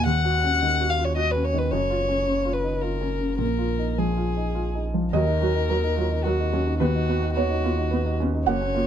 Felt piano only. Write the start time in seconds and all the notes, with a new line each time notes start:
0.06 D#2
0.25 F#4
0.44 C#4
0.62 D#3
0.81 F#4
0.99 F4
1.17 F#4
1.36 C#4
1.54 D#3
1.73 F#2
1.90 F4
2.09 C#4
2.27 C#3
2.45 F4
2.64 D#4
2.82 F4
3.01 C#4
3.21 C#3
3.38 A#2
3.59 F4
3.79 D#4
3.98 F3
4.17 F4
4.37 D#4
4.55 F4
4.75 D#4
4.94 F3
5.13 D#2 D#5
5.27 D#4
5.42 F#4
5.55 D#4
5.70 A#4
5.84 D#4
5.96 F4
6.11 D#4
6.25 A#4
6.40 D#4
6.53 C#4
6.67 D#4
6.80 D#2 B4
6.95 D#4
7.09 F#4
7.22 D#4
7.35 B4 C#5
7.50 D#4
7.64 F4
7.78 D#4
7.91 B4
8.05 D#4
8.20 C#4
8.34 D#4
8.46 F#2 F#5
8.61 C#4
8.75 F4